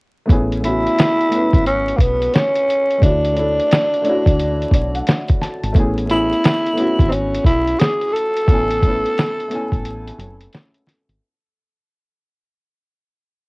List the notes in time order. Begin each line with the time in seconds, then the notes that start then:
0.25 A1 A3 B3 C#4, kick
0.30 E4 G#4, closed hi-hat
0.52 closed hi-hat
0.60 A3 B3 C#4, closed hi-hat
0.65 E4 F#4
0.87 closed hi-hat
0.99 snare, closed hi-hat
1.21 closed hi-hat
1.29 A3 B3 C#4, closed hi-hat
1.35 E4 B4
1.53 G#1, kick, closed hi-hat
1.66 C#4, closed hi-hat
1.88 closed hi-hat
1.96 B1 A#3, kick
2.00 B3, closed hi-hat
2.22 closed hi-hat
2.34 C#4, snare, closed hi-hat
2.56 closed hi-hat
2.70 closed hi-hat
2.91 closed hi-hat
2.98 D2 A3 D4 C#5, kick
3.03 D4 E4 F#4, closed hi-hat
3.25 closed hi-hat
3.32 A3 D4 C#5
3.37 E4 A4, closed hi-hat
3.60 closed hi-hat
3.71 snare, closed hi-hat
3.94 closed hi-hat
4.02 A3 D4 C#5, closed hi-hat
4.07 E4 F#4
4.26 D2, kick, closed hi-hat
4.40 closed hi-hat
4.62 closed hi-hat
4.71 B1 D5, kick, closed hi-hat
4.95 F#5, closed hi-hat
5.07 F#5, snare, closed hi-hat
5.28 kick, closed hi-hat
5.41 A5, snare, closed hi-hat
5.63 G#1, closed hi-hat
5.73 A1 A3 B3 C#4, kick, closed hi-hat
5.78 E4 G#4
5.98 closed hi-hat
6.06 A3 B3 C#4, closed hi-hat
6.11 E4 G#4
6.33 closed hi-hat
6.44 snare, closed hi-hat
6.66 closed hi-hat
6.73 A3 B3 C#4
6.77 E4 F#4, closed hi-hat
6.99 G#1, kick, closed hi-hat
7.08 C4 C#4, closed hi-hat
7.34 closed hi-hat
7.44 B1 E4, kick, closed hi-hat
7.67 closed hi-hat
7.79 G#4, snare, closed hi-hat
8.01 closed hi-hat
8.13 A4, closed hi-hat
8.37 closed hi-hat
8.46 A1 A3 B3 C#4, kick, closed hi-hat
8.52 E4 G#5
8.71 closed hi-hat
8.81 A3 B3 C#4, kick, closed hi-hat
8.86 E4 B4
9.06 closed hi-hat
9.18 snare, closed hi-hat
9.40 closed hi-hat
9.48 A3 B3 C#4, closed hi-hat
9.54 E4 G#5
9.72 A1, kick, closed hi-hat
9.85 closed hi-hat
10.08 closed hi-hat
10.18 F#1, closed hi-hat
10.41 closed hi-hat
10.53 snare, closed hi-hat
10.74 closed hi-hat
10.87 snare, closed hi-hat
11.09 G#1, closed hi-hat